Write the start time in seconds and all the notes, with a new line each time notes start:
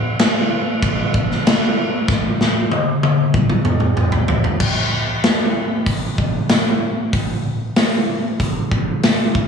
0.19 snare, crash
0.83 kick, crash
1.14 kick
1.31 snare
1.47 snare, crash
2.08 kick, snare
2.41 snare
2.72 high tom
3.03 high tom
3.34 kick, mid tom
3.50 mid tom
3.65 mid tom
3.80 mid tom
3.97 mid tom
4.12 floor tom
4.28 floor tom
4.44 floor tom
4.60 kick, crash
5.23 snare, open hi-hat
5.86 kick, open hi-hat
6.18 kick
6.49 snare, open hi-hat
7.13 kick, open hi-hat
7.76 snare, open hi-hat
8.40 kick, open hi-hat
8.71 kick
9.03 snare, open hi-hat
9.35 kick